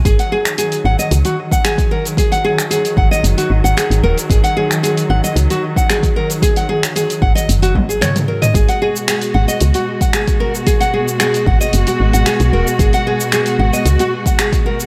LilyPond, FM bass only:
\new Staff \with { instrumentName = "FM bass" } { \clef bass \time 4/4 \key gis \minor \tempo 4 = 113 gis,,16 r4 r16 gis,,16 r16 cis,16 r4. r16 | r4. gis,,16 r16 fis,,16 r16 gis,,16 gis,,16 r16 gis,,16 dis,,16 r16 | gis,,16 r4 r16 gis,,16 r16 cis,16 r4. r16 | r4. gis,,16 r16 fis,,8 gis,,8 gis,4 |
gis,,16 r4 r16 gis,,16 r16 cis,16 r4. r16 | r4. gis,,16 r16 fis,,16 r16 gis,,16 gis,,16 r16 b,,16 dis,,16 r16 | gis,,16 r4 r16 gis,,16 r16 cis,16 r4. r16 | }